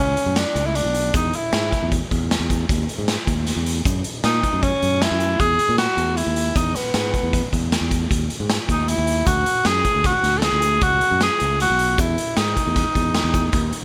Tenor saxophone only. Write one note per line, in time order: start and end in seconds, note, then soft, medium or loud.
0.00 0.38 C#4 medium
0.37 0.68 D4 medium
0.66 0.77 E4 medium
0.76 1.14 D4 medium
1.16 1.37 D#4 medium
1.36 1.93 E4 medium
4.24 4.64 D#4 medium
4.62 5.03 C#4 medium
5.02 5.41 E4 medium
5.40 5.77 G#4 loud
5.78 6.18 F#4 medium
6.16 6.58 E4 medium
6.56 6.77 D#4 medium
6.75 7.53 B3 medium
8.71 8.90 D#4 medium
8.89 9.28 E4 medium
9.26 9.68 F#4 medium
9.66 10.08 G#4 loud
10.06 10.39 F#4 medium
10.38 10.45 A4 medium
10.43 10.84 G#4 loud
10.83 11.21 F#4 loud
11.22 11.58 G#4 medium
11.61 12.01 F#4 medium
12.00 12.39 E4 medium
12.37 13.84 D#4 medium